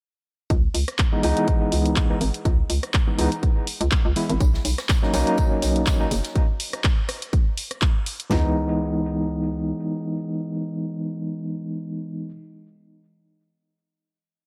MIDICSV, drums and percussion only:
0, 0, Header, 1, 2, 480
1, 0, Start_track
1, 0, Tempo, 487805
1, 494, Time_signature, 4, 2, 24, 8
1, 14233, End_track
2, 0, Start_track
2, 0, Title_t, "Drums"
2, 493, Note_on_c, 9, 36, 115
2, 494, Note_on_c, 9, 42, 54
2, 592, Note_off_c, 9, 36, 0
2, 592, Note_off_c, 9, 42, 0
2, 734, Note_on_c, 9, 46, 104
2, 832, Note_off_c, 9, 46, 0
2, 866, Note_on_c, 9, 37, 73
2, 866, Note_on_c, 9, 42, 67
2, 965, Note_off_c, 9, 37, 0
2, 965, Note_off_c, 9, 42, 0
2, 971, Note_on_c, 9, 39, 115
2, 973, Note_on_c, 9, 42, 53
2, 974, Note_on_c, 9, 36, 118
2, 1070, Note_off_c, 9, 39, 0
2, 1072, Note_off_c, 9, 36, 0
2, 1072, Note_off_c, 9, 42, 0
2, 1214, Note_on_c, 9, 46, 89
2, 1312, Note_off_c, 9, 46, 0
2, 1346, Note_on_c, 9, 42, 69
2, 1444, Note_off_c, 9, 42, 0
2, 1453, Note_on_c, 9, 36, 113
2, 1453, Note_on_c, 9, 42, 52
2, 1551, Note_off_c, 9, 42, 0
2, 1552, Note_off_c, 9, 36, 0
2, 1693, Note_on_c, 9, 46, 101
2, 1792, Note_off_c, 9, 46, 0
2, 1826, Note_on_c, 9, 42, 67
2, 1924, Note_off_c, 9, 42, 0
2, 1932, Note_on_c, 9, 39, 121
2, 1933, Note_on_c, 9, 36, 113
2, 1934, Note_on_c, 9, 42, 54
2, 2030, Note_off_c, 9, 39, 0
2, 2032, Note_off_c, 9, 36, 0
2, 2032, Note_off_c, 9, 42, 0
2, 2174, Note_on_c, 9, 46, 89
2, 2272, Note_off_c, 9, 46, 0
2, 2306, Note_on_c, 9, 42, 67
2, 2404, Note_off_c, 9, 42, 0
2, 2414, Note_on_c, 9, 36, 120
2, 2414, Note_on_c, 9, 42, 53
2, 2512, Note_off_c, 9, 36, 0
2, 2513, Note_off_c, 9, 42, 0
2, 2654, Note_on_c, 9, 46, 110
2, 2752, Note_off_c, 9, 46, 0
2, 2786, Note_on_c, 9, 37, 73
2, 2786, Note_on_c, 9, 42, 63
2, 2885, Note_off_c, 9, 37, 0
2, 2885, Note_off_c, 9, 42, 0
2, 2892, Note_on_c, 9, 39, 121
2, 2894, Note_on_c, 9, 36, 121
2, 2894, Note_on_c, 9, 42, 52
2, 2991, Note_off_c, 9, 39, 0
2, 2992, Note_off_c, 9, 36, 0
2, 2993, Note_off_c, 9, 42, 0
2, 3134, Note_on_c, 9, 46, 95
2, 3233, Note_off_c, 9, 46, 0
2, 3266, Note_on_c, 9, 42, 67
2, 3365, Note_off_c, 9, 42, 0
2, 3374, Note_on_c, 9, 36, 117
2, 3374, Note_on_c, 9, 42, 52
2, 3472, Note_off_c, 9, 36, 0
2, 3472, Note_off_c, 9, 42, 0
2, 3613, Note_on_c, 9, 46, 105
2, 3712, Note_off_c, 9, 46, 0
2, 3746, Note_on_c, 9, 42, 66
2, 3845, Note_off_c, 9, 42, 0
2, 3852, Note_on_c, 9, 39, 125
2, 3854, Note_on_c, 9, 36, 118
2, 3854, Note_on_c, 9, 42, 53
2, 3950, Note_off_c, 9, 39, 0
2, 3952, Note_off_c, 9, 42, 0
2, 3953, Note_off_c, 9, 36, 0
2, 4094, Note_on_c, 9, 46, 94
2, 4192, Note_off_c, 9, 46, 0
2, 4226, Note_on_c, 9, 42, 67
2, 4325, Note_off_c, 9, 42, 0
2, 4334, Note_on_c, 9, 36, 122
2, 4334, Note_on_c, 9, 42, 53
2, 4337, Note_on_c, 9, 54, 84
2, 4433, Note_off_c, 9, 36, 0
2, 4433, Note_off_c, 9, 42, 0
2, 4436, Note_off_c, 9, 54, 0
2, 4469, Note_on_c, 9, 38, 45
2, 4567, Note_off_c, 9, 38, 0
2, 4574, Note_on_c, 9, 46, 113
2, 4579, Note_on_c, 9, 54, 64
2, 4673, Note_off_c, 9, 46, 0
2, 4677, Note_off_c, 9, 54, 0
2, 4707, Note_on_c, 9, 37, 77
2, 4707, Note_on_c, 9, 38, 58
2, 4707, Note_on_c, 9, 42, 63
2, 4805, Note_off_c, 9, 37, 0
2, 4805, Note_off_c, 9, 42, 0
2, 4806, Note_off_c, 9, 38, 0
2, 4812, Note_on_c, 9, 39, 119
2, 4814, Note_on_c, 9, 36, 125
2, 4814, Note_on_c, 9, 42, 50
2, 4815, Note_on_c, 9, 54, 91
2, 4821, Note_on_c, 9, 38, 120
2, 4910, Note_off_c, 9, 39, 0
2, 4912, Note_off_c, 9, 36, 0
2, 4912, Note_off_c, 9, 42, 0
2, 4914, Note_off_c, 9, 54, 0
2, 4919, Note_off_c, 9, 38, 0
2, 4951, Note_on_c, 9, 38, 48
2, 5049, Note_off_c, 9, 38, 0
2, 5051, Note_on_c, 9, 54, 70
2, 5054, Note_on_c, 9, 46, 96
2, 5150, Note_off_c, 9, 54, 0
2, 5152, Note_off_c, 9, 46, 0
2, 5187, Note_on_c, 9, 42, 63
2, 5285, Note_off_c, 9, 42, 0
2, 5290, Note_on_c, 9, 54, 80
2, 5294, Note_on_c, 9, 36, 121
2, 5295, Note_on_c, 9, 42, 52
2, 5389, Note_off_c, 9, 54, 0
2, 5392, Note_off_c, 9, 36, 0
2, 5393, Note_off_c, 9, 42, 0
2, 5534, Note_on_c, 9, 46, 109
2, 5536, Note_on_c, 9, 54, 69
2, 5632, Note_off_c, 9, 46, 0
2, 5634, Note_off_c, 9, 54, 0
2, 5666, Note_on_c, 9, 42, 65
2, 5765, Note_off_c, 9, 42, 0
2, 5772, Note_on_c, 9, 39, 122
2, 5772, Note_on_c, 9, 54, 92
2, 5774, Note_on_c, 9, 36, 118
2, 5774, Note_on_c, 9, 38, 104
2, 5774, Note_on_c, 9, 42, 51
2, 5870, Note_off_c, 9, 39, 0
2, 5870, Note_off_c, 9, 54, 0
2, 5872, Note_off_c, 9, 36, 0
2, 5872, Note_off_c, 9, 38, 0
2, 5873, Note_off_c, 9, 42, 0
2, 6014, Note_on_c, 9, 46, 98
2, 6016, Note_on_c, 9, 54, 64
2, 6113, Note_off_c, 9, 46, 0
2, 6115, Note_off_c, 9, 54, 0
2, 6133, Note_on_c, 9, 38, 53
2, 6146, Note_on_c, 9, 42, 66
2, 6231, Note_off_c, 9, 38, 0
2, 6244, Note_off_c, 9, 42, 0
2, 6254, Note_on_c, 9, 36, 118
2, 6254, Note_on_c, 9, 42, 51
2, 6352, Note_off_c, 9, 36, 0
2, 6352, Note_off_c, 9, 42, 0
2, 6493, Note_on_c, 9, 46, 114
2, 6592, Note_off_c, 9, 46, 0
2, 6626, Note_on_c, 9, 37, 81
2, 6626, Note_on_c, 9, 42, 61
2, 6724, Note_off_c, 9, 37, 0
2, 6724, Note_off_c, 9, 42, 0
2, 6732, Note_on_c, 9, 39, 117
2, 6733, Note_on_c, 9, 36, 127
2, 6734, Note_on_c, 9, 42, 51
2, 6830, Note_off_c, 9, 39, 0
2, 6832, Note_off_c, 9, 36, 0
2, 6832, Note_off_c, 9, 42, 0
2, 6974, Note_on_c, 9, 37, 86
2, 6974, Note_on_c, 9, 46, 97
2, 7072, Note_off_c, 9, 37, 0
2, 7072, Note_off_c, 9, 46, 0
2, 7106, Note_on_c, 9, 42, 63
2, 7205, Note_off_c, 9, 42, 0
2, 7214, Note_on_c, 9, 36, 125
2, 7214, Note_on_c, 9, 42, 50
2, 7312, Note_off_c, 9, 36, 0
2, 7313, Note_off_c, 9, 42, 0
2, 7454, Note_on_c, 9, 46, 107
2, 7552, Note_off_c, 9, 46, 0
2, 7586, Note_on_c, 9, 37, 62
2, 7586, Note_on_c, 9, 42, 62
2, 7685, Note_off_c, 9, 37, 0
2, 7685, Note_off_c, 9, 42, 0
2, 7693, Note_on_c, 9, 39, 117
2, 7694, Note_on_c, 9, 36, 122
2, 7694, Note_on_c, 9, 42, 50
2, 7791, Note_off_c, 9, 39, 0
2, 7792, Note_off_c, 9, 36, 0
2, 7793, Note_off_c, 9, 42, 0
2, 7934, Note_on_c, 9, 46, 99
2, 8033, Note_off_c, 9, 46, 0
2, 8066, Note_on_c, 9, 42, 62
2, 8165, Note_off_c, 9, 42, 0
2, 8174, Note_on_c, 9, 38, 103
2, 8174, Note_on_c, 9, 43, 102
2, 8272, Note_off_c, 9, 38, 0
2, 8272, Note_off_c, 9, 43, 0
2, 14233, End_track
0, 0, End_of_file